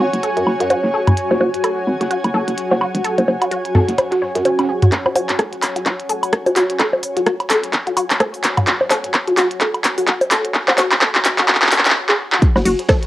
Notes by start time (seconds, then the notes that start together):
Already playing: F#4 C#5 G#5
0.13 F#1, closed hi-hat
0.23 A4, closed hi-hat
0.37 F#2, closed hi-hat
0.47 F#1, closed hi-hat, high woodblock
0.60 F#2 F#4, snare, closed hi-hat
0.70 F#4, closed hi-hat, low bongo
0.83 F#1, snare
0.93 A4, snare, closed hi-hat
1.07 F#1, closed hi-hat, mid tom, high woodblock
1.17 closed hi-hat
1.30 F#1 F#4, snare, low bongo
1.40 F#1 F#4, closed hi-hat, low bongo
1.54 closed hi-hat
1.64 A4, closed hi-hat, open hi-hat, high woodblock
1.87 G#1, closed hi-hat
2.01 F#1 F#4, snare, closed hi-hat
2.11 F#4, closed hi-hat
2.24 F#1, closed hi-hat, high woodblock
2.34 F#1 A4, closed hi-hat
2.48 F#1, closed hi-hat
2.58 closed hi-hat
2.71 F#1 F#4, snare, low bongo
2.81 F#4, closed hi-hat, high woodblock
2.95 E1, closed hi-hat
3.04 A4, closed hi-hat
3.18 F#1, closed hi-hat, low bongo
3.28 F#1, closed hi-hat, low bongo
3.42 F#4, closed hi-hat, high woodblock
3.51 F#4, closed hi-hat
3.65 closed hi-hat
3.75 G#1 A4, snare, closed hi-hat, mid tom
3.88 F#1, snare, closed hi-hat
3.98 snare, closed hi-hat, low bongo, high woodblock
4.11 F#4, snare, closed hi-hat
4.22 C#5, snare
4.35 F#2, snare, closed hi-hat
4.45 C#4, closed hi-hat, low bongo
4.59 C#4, snare, closed hi-hat, high woodblock
4.69 G#4, closed hi-hat
4.82 F#4, closed hi-hat, mid tom
4.92 kick, clap, closed hi-hat
5.06 F#4, low bongo, high woodblock
5.15 F#4, open hi-hat, low bongo
5.29 clap, closed hi-hat
5.39 A4, kick, cross-stick, closed hi-hat
5.53 closed hi-hat
5.62 clap, open hi-hat, high woodblock
5.76 F#4, closed hi-hat
5.86 F#4, kick, clap, closed hi-hat
6.00 closed hi-hat
6.09 A4, open hi-hat
6.23 open hi-hat, high woodblock
6.33 kick, cross-stick, closed hi-hat
6.46 F#4, open hi-hat, low bongo
6.56 F#4, clap, open hi-hat
6.70 closed hi-hat
6.80 A4, kick, clap, closed hi-hat, high woodblock
6.93 low bongo
7.03 open hi-hat
7.17 F#4, closed hi-hat
7.26 F#4, kick, cross-stick, closed hi-hat
7.40 closed hi-hat, high woodblock
7.50 A4, clap, open hi-hat
7.64 closed hi-hat
7.73 kick, clap, closed hi-hat
7.87 F#4, closed hi-hat
7.97 F#4, open hi-hat, high woodblock
8.10 clap, open hi-hat
8.20 A4, kick, cross-stick, closed hi-hat, low bongo
8.34 open hi-hat
8.44 clap, open hi-hat
8.57 F#4, closed hi-hat, mid tom, high woodblock
8.67 F#4, kick, clap, closed hi-hat
8.81 low bongo
8.90 A4, clap, open hi-hat, low bongo
9.04 closed hi-hat
9.14 kick, clap, closed hi-hat, high woodblock
9.28 F#4, closed hi-hat
9.37 F#4, clap, open hi-hat
9.51 closed hi-hat
9.61 A4, kick, clap, closed hi-hat
9.74 closed hi-hat, high woodblock
9.84 clap, open hi-hat
9.98 F#4, open hi-hat
10.08 F#4, kick, clap, closed hi-hat
10.21 open hi-hat, low bongo
10.31 A4, clap, open hi-hat, high woodblock
10.45 closed hi-hat
10.54 kick, clap, closed hi-hat
10.68 F#4, clap, low bongo
10.78 F#4, clap, open hi-hat, low bongo
10.92 clap, closed hi-hat, high woodblock
11.01 A4, kick, clap, closed hi-hat
11.15 clap, closed hi-hat
11.25 clap, open hi-hat
11.39 F#4, clap, closed hi-hat
11.48 F#4, kick, clap, closed hi-hat, high woodblock
11.55 clap
11.62 clap, closed hi-hat
11.67 clap
11.72 A4, clap, open hi-hat
11.79 clap
11.85 clap, open hi-hat
11.90 clap
12.09 G#4, clap
12.32 F#4, clap
12.42 kick, closed hi-hat
12.56 F#1 F#4, snare, low bongo, high woodblock
12.65 F#1 F#4, closed hi-hat, open hi-hat, ride
12.79 closed hi-hat
12.89 A4, kick, cross-stick, snare, closed hi-hat, open hi-hat, low bongo
13.03 closed hi-hat